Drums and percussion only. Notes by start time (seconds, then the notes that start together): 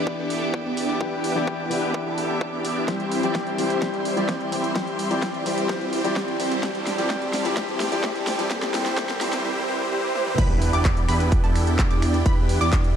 0.07 kick
0.30 open hi-hat
0.54 kick
0.77 open hi-hat
1.01 kick
1.24 open hi-hat
1.47 kick
1.71 open hi-hat
1.94 kick
2.18 open hi-hat
2.41 kick
2.65 open hi-hat
2.88 kick, snare, closed hi-hat
3.00 closed hi-hat
3.12 open hi-hat
3.23 closed hi-hat
3.35 kick, snare, closed hi-hat
3.47 closed hi-hat
3.58 open hi-hat
3.70 closed hi-hat
3.82 kick, snare, closed hi-hat
3.94 closed hi-hat
4.05 open hi-hat
4.17 closed hi-hat
4.29 kick, snare, closed hi-hat
4.41 closed hi-hat
4.52 open hi-hat
4.64 closed hi-hat
4.76 kick, snare, closed hi-hat
4.87 closed hi-hat
4.99 open hi-hat
5.11 closed hi-hat
5.22 kick, snare, closed hi-hat
5.34 closed hi-hat
5.46 open hi-hat
5.58 closed hi-hat
5.69 kick, snare, closed hi-hat
5.81 closed hi-hat
5.93 open hi-hat
6.05 closed hi-hat
6.16 kick, snare, closed hi-hat
6.28 closed hi-hat
6.40 open hi-hat
6.51 closed hi-hat
6.63 kick, snare, closed hi-hat
6.75 closed hi-hat
6.87 snare, open hi-hat
6.98 closed hi-hat
7.10 kick, snare, closed hi-hat
7.22 closed hi-hat
7.33 snare, open hi-hat
7.45 closed hi-hat
7.57 kick, snare, closed hi-hat
7.69 closed hi-hat
7.80 snare, open hi-hat
7.92 closed hi-hat
8.04 kick, snare, closed hi-hat
8.15 closed hi-hat
8.27 snare, open hi-hat
8.39 closed hi-hat
8.51 kick, snare, closed hi-hat
8.62 snare, closed hi-hat
8.74 snare, open hi-hat
8.86 snare, closed hi-hat
8.97 kick, snare, closed hi-hat
9.09 snare, closed hi-hat
9.21 snare, open hi-hat
9.33 snare, closed hi-hat
10.15 high tom
10.27 mid tom
10.38 kick, closed hi-hat, crash
10.62 open hi-hat
10.73 closed hi-hat
10.85 kick, clap, closed hi-hat
10.97 closed hi-hat
11.09 finger snap, open hi-hat
11.20 closed hi-hat
11.32 kick, closed hi-hat
11.44 closed hi-hat
11.56 finger snap, open hi-hat
11.67 closed hi-hat
11.79 kick, clap, closed hi-hat
11.91 closed hi-hat
12.02 finger snap, open hi-hat
12.14 closed hi-hat
12.26 kick, closed hi-hat
12.49 open hi-hat
12.61 closed hi-hat
12.73 kick, clap, closed hi-hat
12.84 closed hi-hat